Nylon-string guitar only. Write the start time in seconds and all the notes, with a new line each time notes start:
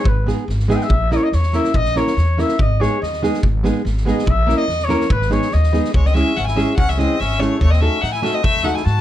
0.26 G#3 B3 D#4 G#4
0.68 G#3 B3 D#4 G#4
1.10 A#3 C#4 E4 A#4
1.53 A#3 C#4 E4 A#4
1.96 A#3 C#4 E4 A#4
2.37 A#3 C#4 E4 A#4
2.80 G#3 B3 D#4 G#4
3.22 G#3 B3 D#4 G#4
3.64 G#3 B3 D#4 G#4
4.05 G#3 B3 D#4 G#4
4.47 A#3 C#4 E4 A#4
4.89 A#3 C#4 E4 A#4
5.30 G#3 B3 D#4 G#4
5.72 G#3 B3 D#4 G#4
6.14 G#3 C#4 E4 G#4
6.56 G#3 C#4 E4 G#4
6.97 G#3 C#4 E4 G#4
7.39 G#3 C#4 E4 G#4
7.81 A3 D#4 F#4 A4
8.22 A3 D#4 F#4 A4
8.63 A3 D#4 F#4 A4